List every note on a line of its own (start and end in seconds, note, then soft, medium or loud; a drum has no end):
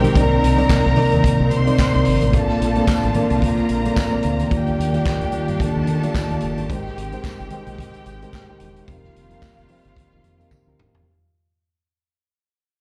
0.00 2.29 D#3 medium
0.00 0.13 G#3 medium
0.00 0.17 G#3 medium
0.00 2.29 C4 medium
0.00 0.16 D#4 medium
0.00 0.14 G4 medium
0.00 0.17 G4 medium
0.00 0.17 G#4 medium
0.00 0.16 A#4 medium
0.00 2.29 A#4 medium
0.00 0.17 C5 loud
0.00 0.17 D5 medium
0.00 0.14 G5 medium
0.00 low conga medium
0.04 closed hi-hat soft
0.15 0.35 C2 loud
0.15 0.51 C3 medium
0.15 6.66 A#3 medium
0.15 0.51 C4 medium
0.15 0.51 D#4 medium
0.15 1.49 A#4 medium
0.15 0.52 A#4 medium
0.15 0.52 D5 medium
0.15 1.49 A#5 medium
0.15 kick loud
0.15 closed hi-hat medium
0.43 0.62 C2 medium
0.43 closed hi-hat medium
0.43 high conga medium
0.57 0.91 C3 medium
0.57 0.91 C4 medium
0.57 0.92 D#4 medium
0.57 0.92 A#4 medium
0.57 0.92 D5 medium
0.57 closed hi-hat soft
0.57 high conga medium
0.69 kick loud
0.69 snare loud
0.69 clap medium
0.69 tambourine loud
0.69 muted conga soft
0.69 high conga medium
0.86 0.94 C2 medium
0.96 1.55 C3 medium
0.96 1.55 C4 medium
0.96 1.56 D#4 medium
0.96 1.56 A#4 medium
0.96 1.56 D5 medium
0.96 open hi-hat medium
0.96 high conga medium
0.96 low conga medium
1.12 1.21 D#2 medium
1.12 closed hi-hat soft
1.24 kick loud
1.24 closed hi-hat loud
1.24 low conga medium
1.40 1.48 C2 medium
1.51 1.71 C3 medium
1.51 2.32 C5 medium
1.51 2.32 C6 medium
1.51 closed hi-hat medium
1.66 1.89 C3 medium
1.66 1.89 C4 medium
1.66 1.90 D#4 medium
1.66 1.90 A#4 medium
1.66 1.90 D5 medium
1.66 closed hi-hat soft
1.66 high conga medium
1.78 kick loud
1.78 snare loud
1.78 clap medium
1.78 tambourine medium
1.94 2.03 C2 medium
1.94 2.28 C3 medium
1.94 2.28 C4 medium
1.94 2.28 D#4 medium
1.94 2.28 A#4 medium
1.94 2.29 D5 medium
1.94 closed hi-hat soft
1.94 muted conga soft
2.05 2.17 G#1 medium
2.05 open hi-hat medium
2.21 2.34 A1 medium
2.21 closed hi-hat soft
2.21 low conga medium
2.33 2.53 A#1 loud
2.33 2.69 A#2 medium
2.33 4.49 D3 medium
2.33 4.49 F3 medium
2.33 2.69 A#3 medium
2.33 2.69 C4 medium
2.33 4.49 F4 medium
2.33 2.70 A4 medium
2.33 3.41 A4 medium
2.33 2.70 D5 medium
2.33 3.41 A5 medium
2.33 kick loud
2.33 closed hi-hat medium
2.33 muted conga soft
2.49 snare soft
2.49 muted conga soft
2.61 2.80 A#1 medium
2.61 closed hi-hat medium
2.61 high conga medium
2.75 3.09 A#2 medium
2.75 3.10 A#3 medium
2.75 3.10 C4 medium
2.75 3.10 A4 medium
2.75 3.10 D5 medium
2.75 closed hi-hat soft
2.75 high conga medium
2.87 kick loud
2.87 snare loud
2.87 clap medium
2.87 tambourine loud
2.87 high conga medium
3.03 3.12 A1 medium
3.03 closed hi-hat soft
3.03 muted conga soft
3.14 3.73 A#2 medium
3.14 3.74 A#3 medium
3.14 3.74 C4 medium
3.14 3.74 A#4 medium
3.14 3.74 D5 medium
3.14 closed hi-hat medium
3.14 high conga medium
3.14 low conga medium
3.30 3.50 C2 loud
3.30 closed hi-hat soft
3.42 4.49 A#4 medium
3.42 4.49 A#5 medium
3.42 kick loud
3.42 closed hi-hat medium
3.42 low conga medium
3.57 closed hi-hat soft
3.69 3.89 A#1 medium
3.69 closed hi-hat medium
3.85 4.08 A#2 medium
3.85 4.08 A#3 medium
3.85 4.08 C4 medium
3.85 4.08 A4 medium
3.85 4.08 D5 medium
3.85 closed hi-hat medium
3.85 high conga medium
3.96 kick loud
3.96 snare loud
3.96 clap medium
3.96 tambourine loud
4.12 4.46 A#2 medium
4.12 4.46 A#3 medium
4.12 4.46 C4 medium
4.12 4.46 A#4 medium
4.12 4.46 D5 medium
4.12 muted conga soft
4.23 4.44 D2 medium
4.23 closed hi-hat medium
4.39 closed hi-hat soft
4.39 low conga medium
4.50 4.70 D#2 loud
4.50 4.87 D#3 medium
4.50 8.83 D#3 medium
4.50 4.87 A#3 medium
4.50 6.67 D4 medium
4.50 4.87 F4 medium
4.50 8.84 G4 medium
4.50 5.58 G4 medium
4.50 4.88 G4 medium
4.50 4.87 D5 medium
4.50 5.58 G5 medium
4.50 kick loud
4.50 closed hi-hat medium
4.67 closed hi-hat soft
4.67 muted conga soft
4.78 4.98 D#2 medium
4.78 closed hi-hat medium
4.78 high conga medium
4.92 5.27 D#3 medium
4.92 5.27 A#3 medium
4.92 5.28 F4 medium
4.92 5.28 G4 medium
4.92 5.28 D5 medium
4.92 closed hi-hat soft
4.92 high conga medium
5.06 kick loud
5.06 snare loud
5.06 clap medium
5.06 tambourine loud
5.06 high conga medium
5.21 5.30 D#2 medium
5.21 closed hi-hat soft
5.21 muted conga soft
5.32 5.91 D#3 medium
5.32 5.91 A#3 medium
5.32 5.92 F4 medium
5.32 5.92 G4 medium
5.32 5.92 D5 medium
5.32 closed hi-hat medium
5.32 high conga medium
5.32 low conga medium
5.48 5.57 G2 medium
5.48 closed hi-hat soft
5.60 6.67 A4 medium
5.60 6.67 A5 medium
5.60 kick loud
5.60 closed hi-hat loud
5.60 low conga medium
5.76 5.84 D#2 medium
5.76 muted conga soft
5.87 6.07 D#3 loud
5.87 closed hi-hat medium
6.02 6.26 D#3 medium
6.02 6.26 A#3 medium
6.02 6.26 F4 medium
6.02 6.26 G4 medium
6.02 6.26 D5 loud
6.02 closed hi-hat medium
6.02 high conga medium
6.15 kick loud
6.15 snare loud
6.15 clap medium
6.15 tambourine loud
6.30 6.39 D#2 medium
6.30 6.64 D#3 medium
6.30 6.64 A#3 medium
6.30 6.65 F4 medium
6.30 6.65 G4 medium
6.30 6.65 D5 medium
6.30 closed hi-hat soft
6.30 muted conga soft
6.41 6.58 F#1 medium
6.41 closed hi-hat medium
6.57 6.66 G1 medium
6.57 closed hi-hat medium
6.57 low conga medium
6.69 6.89 G#1 loud
6.69 8.86 G#3 medium
6.69 7.06 G#3 medium
6.69 8.86 C4 medium
6.69 7.06 D#4 medium
6.69 8.83 G4 medium
6.69 7.06 G4 medium
6.69 7.06 A#4 medium
6.69 7.06 C5 medium
6.69 8.84 G5 loud
6.69 kick loud
6.69 closed hi-hat medium
6.86 snare soft
6.97 7.16 G#1 medium
6.97 closed hi-hat medium
6.97 high conga medium
7.12 7.46 G#3 medium
7.12 7.46 D#4 medium
7.12 7.47 G4 medium
7.12 7.47 A#4 medium
7.12 7.47 C5 loud
7.12 closed hi-hat soft
7.12 high conga medium
7.24 kick loud
7.24 snare medium
7.24 clap medium
7.24 tambourine loud
7.24 muted conga soft
7.24 high conga medium
7.39 7.48 G1 medium
7.39 closed hi-hat soft
7.39 muted conga soft
7.50 8.11 G#3 medium
7.50 8.11 D#4 medium
7.50 8.11 G4 medium
7.50 8.11 A#4 medium
7.50 8.11 C5 medium
7.50 closed hi-hat medium
7.50 high conga medium
7.50 low conga medium
7.66 7.86 A#1 loud
7.66 closed hi-hat soft
7.78 kick loud
7.78 closed hi-hat loud
7.78 low conga medium
7.94 closed hi-hat soft
7.94 muted conga soft
8.06 8.25 G#1 medium
8.06 closed hi-hat medium
8.22 8.44 G#3 medium
8.22 8.45 D#4 medium
8.22 8.45 G4 medium
8.22 8.45 A#4 medium
8.22 8.45 C5 medium
8.22 closed hi-hat medium
8.22 high conga medium
8.33 kick loud
8.33 snare loud
8.33 clap medium
8.33 tambourine loud
8.33 muted conga soft
8.49 8.83 G#3 medium
8.49 8.83 D#4 medium
8.49 8.83 G4 medium
8.49 8.83 A#4 medium
8.49 8.83 C5 medium
8.49 muted conga soft
8.60 8.80 E1 medium
8.60 closed hi-hat medium
8.75 closed hi-hat soft
8.75 low conga medium
8.86 9.07 F1 loud
8.86 11.03 D#3 medium
8.86 9.24 F3 medium
8.86 11.03 G3 medium
8.86 11.03 A#3 medium
8.86 9.24 C4 medium
8.86 9.24 D#4 medium
8.86 11.01 F4 medium
8.86 11.04 F4 medium
8.86 9.24 G4 medium
8.86 9.25 A#4 medium
8.86 11.01 F5 medium
8.86 kick loud
8.86 closed hi-hat medium
9.04 snare soft
9.04 muted conga soft
9.15 9.34 F1 medium
9.15 closed hi-hat medium
9.15 high conga medium
9.30 9.64 F3 medium
9.30 9.64 C4 medium
9.30 9.65 D#4 medium
9.30 9.65 G4 medium
9.30 9.65 A#4 medium
9.30 closed hi-hat soft
9.30 high conga medium
9.42 kick loud
9.42 snare loud
9.42 clap medium
9.42 tambourine medium
9.42 muted conga soft
9.42 high conga medium
9.57 9.66 F1 medium
9.57 closed hi-hat soft
9.57 muted conga soft
9.68 10.28 F3 medium
9.68 10.28 C4 medium
9.68 10.28 D#4 medium
9.68 10.29 G4 medium
9.68 10.28 C5 loud
9.68 open hi-hat medium
9.68 high conga medium
9.68 low conga medium
9.85 9.93 G1 medium
9.85 closed hi-hat soft
9.96 kick loud
9.96 closed hi-hat loud
9.96 muted conga soft
9.96 low conga medium
10.12 10.21 F1 medium
10.12 muted conga soft
10.24 10.43 F2 medium
10.24 closed hi-hat medium
10.38 10.62 F3 medium
10.38 10.62 C4 medium
10.38 10.62 D#4 medium
10.38 10.62 G4 medium
10.38 10.62 A#4 loud
10.38 closed hi-hat medium
10.38 high conga medium
10.51 kick loud
10.51 high tom medium
10.51 tambourine loud
10.66 10.75 D2 medium
10.66 11.01 F3 medium
10.66 11.01 C4 medium
10.66 11.01 D#4 medium
10.66 11.01 G4 medium
10.66 11.01 A#4 medium
10.66 muted conga soft
10.79 10.89 D#1 loud
10.79 mid tom medium
10.93 11.02 E1 medium
10.93 floor tom medium
10.93 low conga medium